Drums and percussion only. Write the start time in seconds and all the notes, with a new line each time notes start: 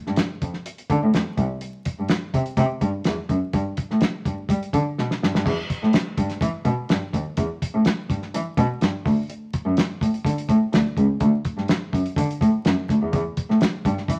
0.07 snare
0.16 snare, closed hi-hat
0.42 kick, closed hi-hat
0.54 snare
0.66 closed hi-hat
0.78 closed hi-hat
0.90 kick, closed hi-hat
1.14 snare, closed hi-hat
1.38 kick, closed hi-hat
1.61 closed hi-hat
1.85 kick, closed hi-hat
2.08 snare, closed hi-hat
2.34 kick, closed hi-hat
2.46 closed hi-hat
2.57 kick, closed hi-hat
2.81 kick, closed hi-hat
3.04 snare, closed hi-hat
3.29 kick, closed hi-hat
3.53 kick, closed hi-hat
3.77 kick, closed hi-hat
3.91 snare
4.01 snare, closed hi-hat
4.25 kick, closed hi-hat
4.49 kick, closed hi-hat
4.63 closed hi-hat
4.73 kick, closed hi-hat
4.98 snare
5.11 snare
5.23 snare
5.35 snare
5.46 kick, crash
5.70 kick, closed hi-hat
5.83 snare
5.93 snare, closed hi-hat
6.17 kick, closed hi-hat
6.30 snare, closed hi-hat
6.41 kick, closed hi-hat
6.65 kick, closed hi-hat
6.89 snare, closed hi-hat
7.13 kick, snare, closed hi-hat
7.37 kick, closed hi-hat
7.62 kick, closed hi-hat
7.85 snare, closed hi-hat
8.10 kick, closed hi-hat
8.22 snare
8.34 closed hi-hat
8.57 kick, closed hi-hat
8.81 snare, closed hi-hat
9.06 kick, open hi-hat
9.30 closed hi-hat
9.53 kick, closed hi-hat
9.77 snare, closed hi-hat
10.01 kick, closed hi-hat
10.14 closed hi-hat
10.25 kick, closed hi-hat
10.38 closed hi-hat
10.49 kick, closed hi-hat
10.73 snare, closed hi-hat
10.97 kick, closed hi-hat
11.20 kick, closed hi-hat
11.45 kick, closed hi-hat
11.58 snare
11.68 snare, closed hi-hat
11.93 kick, closed hi-hat
12.06 closed hi-hat
12.16 kick, closed hi-hat
12.31 closed hi-hat
12.41 kick, closed hi-hat
12.65 snare, closed hi-hat
12.89 kick, snare, closed hi-hat
13.13 kick, closed hi-hat
13.37 kick, closed hi-hat
13.50 snare
13.61 snare, closed hi-hat
13.85 kick, closed hi-hat
13.98 snare
14.08 kick, closed hi-hat